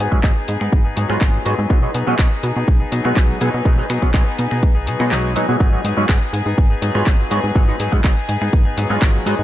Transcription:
Already playing: violin section G#4 B4 G#5
0.00 clean electric guitar F#3 B3 D#4 G#4
0.11 analog synth bass G#2, clav F#3 G#3 B3 C#4, clean electric guitar B3 G#4, kick
0.23 analog synth bass G#1, clean electric guitar F#3 B3 D#4 G#4, clav F#3 G#3 B3 D#4, kick, clap
0.35 clean electric guitar B3 D#4 G#4
0.48 analog synth bass G#2, open hi-hat
0.60 analog synth bass G#2, clean electric guitar B3 D#4 G#4, finger snap
0.72 analog synth bass G#1, kick
0.84 clean electric guitar B3 D#4 G#4
0.96 analog synth bass G#2, clean electric guitar F#3 B3 D#4 G#4, open hi-hat
1.09 analog synth bass G#2, clav F#3 G#3 B3 F4, clean electric guitar B3 D#4 G#4, finger snap
1.21 analog synth bass G#1, clean electric guitar F#3 B3 D#4 G#4, kick, clap
1.45 analog synth bass G#2, clean electric guitar F#3 B3 D#4 G#4, clav F#3 G#3 B3 F#4, open hi-hat
1.59 analog synth bass G#2
1.70 analog synth bass B1, clean electric guitar F#3 B3 D#4 G#4, clav F#3 G#3 B3 D#4, violin section D#4 B4 G#5, kick
1.82 clav F#3 G#3 B3 D#4, clean electric guitar B3 D#4 G#4
1.94 analog synth bass B2, clean electric guitar F#3 B3 D#4 G#4, open hi-hat
2.07 analog synth bass B2, clav F#3 G#3 B3 C#4, clean electric guitar B3 D#4 G#4
2.19 analog synth bass B1, clean electric guitar F#3 B3 D#4 G#4, clav B3 D#4, kick, clap
2.31 clean electric guitar B3 D#4 G#4
2.43 analog synth bass B2, open hi-hat
2.56 analog synth bass B2, clean electric guitar B3 D#4 G#4
2.68 analog synth bass B1, kick
2.80 clean electric guitar B3 D#4 G#4
2.91 analog synth bass B2, clean electric guitar F#3 B3 D#4 G#4, open hi-hat
3.04 analog synth bass B2, clav F#3 G#3 B3 F#4, clean electric guitar B3 D#4 G#4, finger snap
3.16 analog synth bass B1, clean electric guitar F#3 B3 D#4 G#4, kick, clap
3.40 analog synth bass B2, clean electric guitar F#3 B3 D#4 G#4, clav F#3 G#3 B3 G#4, open hi-hat
3.54 analog synth bass B2
3.65 analog synth bass B1, clean electric guitar F#3 B3 D#4 G#4, clav F#3 G#3 B3 D#4, kick
3.77 clav F#3 G#3 B3 D#4, clean electric guitar B3 D#4 G#4
3.89 analog synth bass B2, clean electric guitar F#3 B3 D#4 G#4, finger snap, open hi-hat
4.02 analog synth bass B2, clav F#3 G#3 B3 C#4, clean electric guitar D#4 G#4, kick
4.13 analog synth bass B1, clean electric guitar F#3 B3 D#4 G#4, clav F#3 G#3 B3 D#4, kick, clap
4.26 clean electric guitar B3 D#4 G#4
4.39 analog synth bass B2, open hi-hat
4.50 analog synth bass B2, clean electric guitar B3 D#4 G#4, finger snap
4.63 analog synth bass B1, kick
4.75 clean electric guitar B3 D#4 G#4
4.86 analog synth bass B2, clean electric guitar F#3 B3 D#4 G#4, open hi-hat
4.99 analog synth bass B2, clav F#3 G#3 B3 F#4, clean electric guitar B3 D#4 G#4, finger snap
5.11 analog synth bass B1, clean electric guitar F#3 B3 D#4 G#4, clap
5.35 analog synth bass B2, clean electric guitar F#3 B3 D#4 G#4, clav F#3 G#3 B3 D#4, open hi-hat
5.48 analog synth bass B2, clav F#3 G#3 B3 G#4
5.60 analog synth bass G#1, clav F#3 G#3 B3 D#4, clean electric guitar F#3 B3 D#4 G#4, violin section G#4 B4, kick
5.72 clav F#3 G#3 B3 D#4
5.84 analog synth bass G#2, clean electric guitar F#3 B3 D#4 G#4, open hi-hat
5.97 analog synth bass G#2, clav F#3 G#3 B3 C#4, clean electric guitar B3 D#4 G#4
6.09 analog synth bass G#1, clav F#3 G#3 B3 D#4, clean electric guitar F#3 B3 D#4 G#4, kick, clap
6.21 clean electric guitar B3 D#4 G#4
6.33 analog synth bass G#2, open hi-hat
6.46 analog synth bass G#2, clean electric guitar B3 D#4 G#4
6.58 analog synth bass G#1, kick
6.70 clean electric guitar B3 D#4 G#4
6.82 analog synth bass G#2, clean electric guitar F#3 B3 D#4 G#4, open hi-hat
6.95 analog synth bass G#2, clav F#3 G#3 B3 F4, clean electric guitar B3 D#4 G#4, finger snap
7.06 analog synth bass G#1, clean electric guitar F#3 B3 D#4 G#4, kick, clap
7.31 analog synth bass G#2, clean electric guitar F#3 B3 D#4 G#4, clav F#3 G#3 B3 F#4, open hi-hat
7.44 analog synth bass G#2
7.55 analog synth bass G#1, clean electric guitar F#3 B3 D#4 G#4, clav F#3 G#3 B3 D#4, kick
7.68 clav F#3 G#3 B3 D#4
7.79 analog synth bass G#2, clean electric guitar F#3 B3 D#4 G#4, open hi-hat
7.92 analog synth bass G#2, clav F#3 G#3 B3 C#4, clean electric guitar G#4, kick
8.04 analog synth bass G#1, clav F#3 G#3 B3 D#4, clean electric guitar F#3 B3 D#4 G#4, kick, clap
8.17 clean electric guitar B3 D#4 G#4
8.29 analog synth bass G#2, open hi-hat
8.41 analog synth bass G#2, clean electric guitar B3 D#4 G#4, finger snap
8.53 analog synth bass G#1, kick
8.65 analog synth bass G#2, clean electric guitar B3 D#4 G#4
8.77 analog synth bass G#2, clean electric guitar F#3 B3 D#4 G#4, open hi-hat
8.89 analog synth bass G#2, clav F#3 G#3 B3 F4, clean electric guitar B3 D#4 G#4, finger snap
9.01 analog synth bass G#1, clean electric guitar F#3 B3 D#4 G#4, kick, clap
9.26 analog synth bass G#2, clean electric guitar F#3 B3 D#4 G#4, clav F#3 G#3 B3 F#4, open hi-hat
9.39 analog synth bass G#2

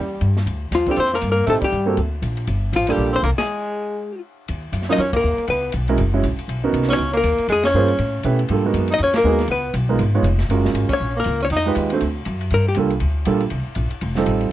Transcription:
Already playing: upright bass E2, tenor saxophone G3, hollow-body jazz guitar G4
0.21 upright bass G2, hi-hat pedal, ride
0.37 snare
0.46 upright bass D2, ride
0.71 upright bass D#2, tenor saxophone F3, hollow-body jazz guitar F4, snare, hi-hat pedal, ride
0.86 tenor saxophone G3, grand piano C4 D4 F4 A4, kick, ride
0.91 hollow-body jazz guitar G4
0.96 upright bass F2, tenor saxophone C4, hollow-body jazz guitar C5, ride
1.05 snare
1.13 tenor saxophone A#3, hollow-body jazz guitar A#4, snare
1.22 upright bass G2, hi-hat pedal, ride
1.31 tenor saxophone A#3, hollow-body jazz guitar A#4
1.46 upright bass A2, tenor saxophone A3, grand piano C4 D#4 G4 A4, hollow-body jazz guitar A4, ride
1.61 tenor saxophone G3, hollow-body jazz guitar G4, muted upright bass stroke, kick, ride
1.71 upright bass G2, hi-hat pedal
1.86 grand piano A#3 C4 F#4 A4
1.97 upright bass D2, ride
2.22 upright bass A#1, hi-hat pedal, ride
2.37 ride
2.47 upright bass G1, ride
2.73 upright bass A1, tenor saxophone F3, hollow-body jazz guitar F4, hi-hat pedal, ride
2.87 tenor saxophone G3, grand piano A#3 D4 F4 A4, hollow-body jazz guitar G4, ride
2.97 upright bass A#1
3.13 tenor saxophone C4, hollow-body jazz guitar C5
3.23 upright bass C2, tenor saxophone A#3, hollow-body jazz guitar A#4, hi-hat pedal, ride
3.38 tenor saxophone G#3, hollow-body jazz guitar G#4, snare, ride
4.48 upright bass D#2, ride
4.72 upright bass F#2, hi-hat pedal, ride
4.82 snare
4.89 grand piano F#3 C#4 D#4 F4 A#4, tenor saxophone D#4, hollow-body jazz guitar D#5, snare
4.98 upright bass F2, tenor saxophone C#4, hollow-body jazz guitar C#5, ride
5.13 tenor saxophone A#3, hollow-body jazz guitar A#4, kick, ride
5.23 upright bass D#2, hi-hat pedal
5.38 muted upright bass stroke, ride
5.47 upright bass C#2, tenor saxophone B3, hollow-body jazz guitar B4, ride
5.72 upright bass B1, hi-hat pedal, ride
5.88 grand piano G#3 C#4 E4 F#4 A#4, ride
5.98 upright bass F#1, ride
6.13 grand piano G#3 C#4 E4 F#4 C#5
6.23 upright bass A#1, hi-hat pedal, ride
6.38 muted upright bass stroke, ride
6.48 upright bass B1, ride
6.64 grand piano B3 C#4 D#4 F#4 A#4
6.73 upright bass C2, hi-hat pedal, ride
6.82 snare
6.88 grand piano B3 C#4 D#4 F#4 C#5, tenor saxophone C#4, snare, ride
6.93 hollow-body jazz guitar C#5
6.98 upright bass C#2, ride
7.13 tenor saxophone A#3, ride
7.17 hollow-body jazz guitar A#4
7.23 upright bass D#2, hi-hat pedal, ride
7.38 muted upright bass stroke, ride
7.48 upright bass F2, tenor saxophone G#3, ride
7.52 hollow-body jazz guitar G#4
7.63 tenor saxophone C#4, hollow-body jazz guitar C#5, snare, ride
7.73 upright bass G2, grand piano A#3 C#4 F4 G#4 C5, hi-hat pedal
7.88 ride
7.98 upright bass A2, ride
8.23 upright bass B2, grand piano A3 C#4 E4 G4 B4, hi-hat pedal, ride
8.39 ride
8.48 upright bass G#2, grand piano G3 A#3 D4 F4 A4, ride
8.66 grand piano G#3 B3 D#4 F#4 A#4
8.74 upright bass F#2, hi-hat pedal, ride
8.88 tenor saxophone D#4, ride
8.94 hollow-body jazz guitar D#5
8.98 upright bass F2, ride
9.02 tenor saxophone C#4, hollow-body jazz guitar C#5
9.13 tenor saxophone A#3, snare, ride
9.18 hollow-body jazz guitar A#4
9.24 upright bass D#2, grand piano G#3 B3 D#4 F#4 G#4, hi-hat pedal
9.39 snare, ride
9.48 upright bass C#2, tenor saxophone B3, hollow-body jazz guitar B4, ride
9.74 upright bass B1, hi-hat pedal, ride
9.89 grand piano G#3 B3 D#4 F4 A#4
9.99 upright bass G#1, ride
10.14 grand piano G#3 B3 D#4 F4 C#5
10.23 upright bass F1, hi-hat pedal, ride
10.39 snare, ride
10.49 upright bass F#1, grand piano G#3 C#4 F4 F#4 A#4, ride
10.65 snare
10.74 upright bass G#1, hi-hat pedal, ride
10.89 tenor saxophone C#4, muted upright bass stroke, kick, ride
10.93 hollow-body jazz guitar C#5
11.00 upright bass A#1
11.16 tenor saxophone A#3, hollow-body jazz guitar A#4
11.24 upright bass C#2, hi-hat pedal, ride
11.40 tenor saxophone C#4, ride
11.45 hollow-body jazz guitar C#5
11.50 upright bass F2, tenor saxophone D#4, ride
11.57 hollow-body jazz guitar D#5
11.66 grand piano G#3 D#4 F4 G4 B4
11.75 upright bass D#2, hi-hat pedal, ride
11.90 grand piano A3 C4 D4 F#4 C5, ride
12.00 upright bass D2, ride
12.25 upright bass F#2, hi-hat pedal, ride
12.41 ride
12.50 upright bass G2, hollow-body jazz guitar A#4, ride
12.68 hollow-body jazz guitar G4
12.74 upright bass C2, grand piano G3 A#3 D4 F4 A4, hi-hat pedal, ride
12.90 ride
13.00 upright bass D2, ride
13.25 upright bass A#1, grand piano G3 A#3 D4 F4 A4, hi-hat pedal, ride
13.40 ride
13.50 upright bass C2, ride
13.75 upright bass A#1, hi-hat pedal, ride
13.90 muted upright bass stroke, ride
14.01 upright bass F1, ride
14.15 grand piano G3 C4 D#4 F4 A4, snare
14.26 upright bass A1, hi-hat pedal, ride
14.40 ride

